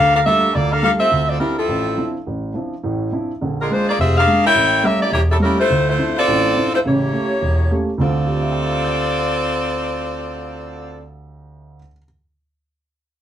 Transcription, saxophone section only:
0.00 0.14 D4 medium
0.00 0.14 A4 medium
0.00 0.14 A#4 medium
0.00 0.14 F5 loud
0.15 0.20 D4 medium
0.15 0.20 A4 medium
0.15 0.20 A#4 medium
0.15 0.20 F5 medium
0.26 0.53 D4 medium
0.26 0.53 A4 medium
0.26 0.53 A#4 medium
0.26 0.53 E5 loud
0.55 0.72 A#3 medium
0.55 0.72 F4 medium
0.55 0.71 A4 medium
0.55 0.72 D5 medium
0.72 0.83 D4 medium
0.72 0.82 A4 medium
0.72 0.83 A#4 medium
0.72 0.83 F5 medium
0.84 0.92 D4 medium
0.84 0.91 A4 medium
0.84 0.92 A#4 medium
0.84 0.92 F5 medium
0.99 1.26 C4 medium
0.99 1.26 F4 medium
0.99 1.27 A4 medium
0.99 1.26 E5 loud
1.28 1.38 C4 medium
1.28 1.40 F4 medium
1.28 1.40 A4 medium
1.28 1.40 D5 medium
1.39 1.56 G3 medium
1.39 1.56 C4 medium
1.39 1.56 E4 medium
1.39 1.56 A#4 medium
1.58 2.11 F3 medium
1.58 2.11 C4 medium
1.58 2.11 E4 medium
1.58 2.11 A4 medium
3.61 3.70 G#3 medium
3.61 3.70 D4 medium
3.61 3.70 F4 medium
3.61 3.70 A#4 medium
3.72 3.88 G#3 medium
3.72 3.88 D4 medium
3.72 3.88 F4 medium
3.72 3.88 C5 medium
3.89 3.99 A#3 medium
3.89 3.98 F4 medium
3.89 3.99 G#4 medium
3.89 3.99 D5 loud
4.00 4.15 C4 medium
4.00 4.15 F4 medium
4.00 4.15 G#4 medium
4.00 4.15 E5 medium
4.17 4.43 D4 medium
4.17 4.43 G#4 medium
4.17 4.43 A#4 medium
4.17 4.43 F5 loud
4.46 4.82 E4 loud
4.46 4.82 A#4 loud
4.46 4.82 C#5 medium
4.46 4.82 G5 loud
4.85 5.02 C#4 medium
4.85 5.01 G4 medium
4.85 5.02 A#4 medium
4.85 5.02 E5 loud
5.02 5.12 A#3 medium
5.02 5.12 E4 medium
5.02 5.12 G4 medium
5.02 5.12 D5 loud
5.13 5.21 A#3 medium
5.13 5.21 E4 medium
5.13 5.21 G4 medium
5.13 5.21 C#5 medium
5.31 5.36 G3 medium
5.31 5.36 C#4 medium
5.31 5.36 E4 medium
5.31 5.36 A4 medium
5.42 5.58 G3 medium
5.42 5.58 C#4 medium
5.42 5.58 E4 medium
5.42 5.58 A#4 medium
5.60 5.86 A3 medium
5.60 5.86 E4 medium
5.60 5.86 F4 medium
5.60 5.86 C5 loud
5.89 6.15 A3 medium
5.89 6.15 E4 medium
5.89 6.15 F4 medium
5.89 6.15 C5 medium
6.18 6.70 C4 loud
6.18 6.70 F4 medium
6.18 6.70 A4 medium
6.18 6.70 D5 loud
6.74 6.79 A3 medium
6.74 6.79 E4 medium
6.74 6.79 F4 medium
6.74 6.79 C5 medium
6.87 7.85 A#3 medium
6.87 7.85 E4 medium
6.87 7.85 G4 medium
6.87 7.85 C#5 medium
8.01 11.05 C4 medium
8.01 11.05 F4 medium
8.01 11.05 A4 medium
8.01 11.05 D5 medium

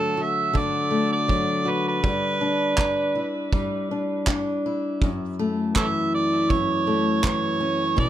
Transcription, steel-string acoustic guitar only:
0.00 0.53 D3 medium
0.00 1.27 F#3 medium
0.00 0.89 A3 medium
0.00 0.17 F#4 soft
0.17 1.64 F#4 soft
0.53 3.18 D3 medium
0.91 2.10 A3 soft
1.28 2.03 F#3 medium
1.65 2.11 F#4 soft
2.03 3.52 G3 medium
2.41 2.76 D4 medium
2.77 3.89 D4 medium
3.15 4.65 E4 medium
3.53 5.09 G3 medium
3.91 4.26 D4 soft
4.28 5.09 D4 medium
4.66 6.54 E4 medium
5.03 6.50 F#2 medium
5.39 6.86 A3 medium
5.76 7.23 E3 medium
6.51 7.99 F#2 medium
6.87 8.06 A3 medium
7.25 8.06 E3 medium
7.60 8.05 C#4 medium
7.96 8.10 B2 medium

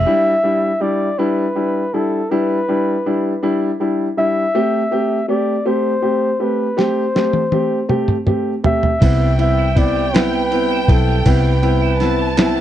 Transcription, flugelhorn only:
0.00 0.83 E5 loud
0.82 1.20 D5 medium
1.19 1.95 B4 medium
1.94 2.32 A4 medium
2.30 3.80 B4 medium
4.18 5.25 E5 loud
5.29 5.68 D5 medium
5.67 6.43 C5 medium
6.41 6.81 B4 medium
6.80 8.28 C5 medium
8.66 9.36 E5 loud
9.41 9.79 E5 loud
9.78 10.18 D5 medium
10.16 10.92 B4 medium
10.91 11.30 A4 medium
11.28 12.61 B4 medium

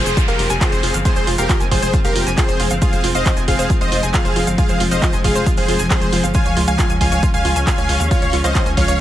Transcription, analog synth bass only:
0.06 0.15 F1 medium
0.28 0.37 F1 medium
0.39 0.48 F1 loud
0.50 0.59 F1 medium
0.72 0.81 F1 medium
0.83 0.92 F1 loud
0.94 1.04 G1 medium
1.16 1.26 F1 medium
1.27 1.37 F1 loud
1.38 1.48 F1 medium
1.60 1.70 F1 medium
1.71 1.81 F1 loud
1.82 1.92 F1 medium
2.05 2.14 F1 medium
2.16 2.25 F1 loud
2.27 2.36 F1 loud
2.49 2.58 F1 medium
2.60 2.69 F1 loud
2.71 2.80 G1 medium
2.93 3.02 F1 medium
3.04 3.13 F1 loud
3.15 3.24 F1 medium
3.37 3.46 F1 medium
3.48 3.57 F1 loud
3.59 3.68 F1 medium
3.81 3.90 F1 medium
3.92 4.01 F1 loud
4.03 4.12 F1 medium
4.25 4.34 F1 medium
4.36 4.45 F1 loud
4.47 4.57 G1 medium
4.69 4.79 F1 medium
4.80 4.90 F1 loud
4.91 5.01 F1 medium
5.13 5.23 F1 medium
5.24 5.34 F1 medium
5.35 5.45 F1 medium
5.57 5.67 F1 medium
5.69 5.78 F1 loud
5.80 5.89 F1 medium
6.02 6.11 F1 medium
6.13 6.22 F1 loud
6.24 6.33 G1 medium
6.46 6.55 C#2 medium
6.57 6.66 C#2 loud
6.68 6.77 C#2 medium
6.90 6.99 C#2 medium
7.01 7.10 C#2 loud
7.12 7.21 C#2 loud
7.34 7.43 C#2 medium
7.45 7.54 C#2 loud
7.56 7.65 C#2 medium
7.78 7.87 C#2 medium
7.89 7.98 C#2 loud
8.00 8.09 D#2 medium
8.22 8.31 C#2 medium
8.33 8.42 C#2 loud
8.44 8.54 C#2 medium
8.66 8.76 C#2 medium
8.77 8.87 C#2 medium
8.88 8.98 C#2 medium

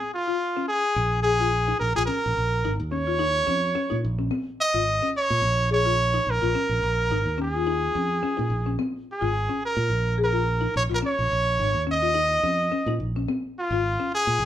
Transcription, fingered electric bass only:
0.96 1.71 A#1 loud
1.81 1.94 A#1 medium
1.97 2.08 A#1 medium
2.26 2.36 A#1 medium
2.37 2.62 A#1 medium
2.65 2.78 G#1 loud
2.80 3.41 D#2 medium
3.48 3.73 F2 medium
3.92 4.02 A#2 medium
4.05 4.29 A#1 medium
4.74 4.99 G#1 medium
5.30 5.41 A#2 loud
5.42 6.18 A#1 loud
6.27 6.41 A#1 medium
6.43 6.54 A#1 loud
6.69 6.81 A#1 medium
6.83 7.08 A#1 loud
7.10 7.24 G#1 loud
7.26 7.87 D#2 loud
7.95 8.20 F2 medium
8.39 8.49 A#2 medium
8.50 8.75 A#1 medium
9.22 9.47 G#1 medium
9.77 9.89 A#2 loud
9.90 10.66 A#1 loud
10.76 10.89 A#1 medium
10.91 11.02 A#1 medium
11.19 11.30 A#1 medium
11.32 11.56 A#1 loud
11.59 11.73 G#1 loud
11.75 12.36 D#2 medium
12.43 12.68 F2 loud
12.86 12.98 A#2 medium
13.00 13.25 A#1 medium
13.71 13.96 G#1 medium
14.27 14.38 A#2 medium
14.39 14.45 A#1 loud

